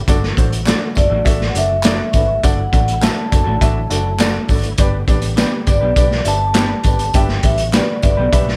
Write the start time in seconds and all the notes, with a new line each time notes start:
Already playing: D3
0.06 G1 G2 F#3 A3 D4 F#4 A4 D5, kick, closed hi-hat, tambourine
0.23 snare
0.37 A1 D4 F#4 A4 C5, kick, closed hi-hat
0.52 closed hi-hat
0.66 A3 D4 F#4 A4 D5, snare, clap, closed hi-hat, tambourine
0.95 F#1 D4 F#4 A4 D5 E5, kick, closed hi-hat, tambourine
1.10 A1 A3 D4 F#4 A4
1.24 A1 D4 F#4 A4 E5, kick, closed hi-hat, tambourine
1.41 snare
1.49 F#5
1.54 F#1 D4 F#4 A4 D5 E5, closed hi-hat, tambourine
1.83 A3 D4 F#4 A4 D5, snare, clap, closed hi-hat, tambourine
2.13 G#1 D4 F#4 A4 B4 E5, kick, closed hi-hat, tambourine
2.43 G1 G2 D4 E4 F#4 A4 D5 F#5, kick, closed hi-hat, tambourine
2.72 A1 D4 F#4 A4 D5, kick, closed hi-hat, tambourine
2.88 closed hi-hat
3.01 A3 D4 F#4 A4 E5 A5, snare, clap, closed hi-hat, tambourine
3.31 F#1 D4 F#4 A4 D5, kick, closed hi-hat, tambourine
3.44 A1 A3 D4 F#4 A4
3.61 A1 D4 F#4 A4 E5, kick, closed hi-hat, tambourine
3.90 F#1 D4 F#4 A4 D5, closed hi-hat, tambourine
4.18 A3 D4 F#4 A4 D5, snare, clap, closed hi-hat, tambourine
4.48 G#1 D4 F#4 A4 D5, kick, open hi-hat, tambourine
4.63 closed hi-hat
4.78 G1 G2 G3 B3 D4 G4 B4 D5, kick, closed hi-hat, tambourine
5.08 A1 D4 G4 B4 D5, kick, closed hi-hat, tambourine
5.22 closed hi-hat
5.36 B3 D4 G4 B4 D5, snare, clap, closed hi-hat, tambourine
5.66 G1 D4 G4 B4 D5, kick, closed hi-hat, tambourine
5.81 B1 B3 D4 G4 B4
5.96 B1 D4 G4 B4 D5, kick, closed hi-hat, tambourine
6.11 snare
6.25 G1 D4 G4 B4 E5 A5, closed hi-hat, tambourine
6.54 B3 D4 G4 B4 D5, snare, clap, closed hi-hat, tambourine
6.84 G#1 D4 G4 B4 D5, kick, closed hi-hat, tambourine
6.99 closed hi-hat
7.13 G1 G2 D4 F#4 G4 B4 E5 G5, kick, closed hi-hat, tambourine
7.29 snare
7.43 A1 D4 G4 B4 E5, kick, closed hi-hat, tambourine
7.58 closed hi-hat
7.72 B3 D4 G4 B4 D5, snare, clap, closed hi-hat, tambourine
8.02 G1 D4 G4 B4 D5 E5, kick, closed hi-hat, tambourine
8.17 B1 B3 D4 G4 B4
8.32 B1 D4 G4 B4 E5, kick, closed hi-hat
8.48 snare